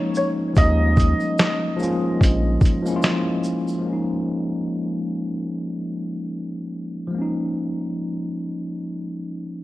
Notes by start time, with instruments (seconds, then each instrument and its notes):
Already playing: tine electric piano F3 G#3 A#3 C#4 D#4, upright piano C#5
0.15 upright piano C#5, shaker
0.53 analog synth bass D#2, tine electric piano F3 G3 A#3, kick, shaker
0.57 tine electric piano G#3 C#4 D#4, upright piano D#5, closed hi-hat
0.97 kick, closed hi-hat, shaker
1.00 shaker
1.20 shaker
1.38 snare, closed hi-hat, shaker
1.77 tine electric piano F3 G#3 A#3, shaker
1.82 tine electric piano C#4 F4, shaker
2.21 analog synth bass A#1, kick, closed hi-hat, shaker
2.61 kick, shaker
2.65 closed hi-hat, shaker
2.82 tine electric piano F3 G#3 A#3, shaker
2.88 tine electric piano C#4 E4
2.96 tine electric piano F4
3.02 snare, closed hi-hat, shaker
3.44 shaker
3.68 shaker
3.79 tine electric piano F3 G#3
3.86 tine electric piano A#3 C#4
3.93 tine electric piano D#4
7.07 tine electric piano F3 G#3
7.15 tine electric piano A#3 C#4
7.22 tine electric piano D#4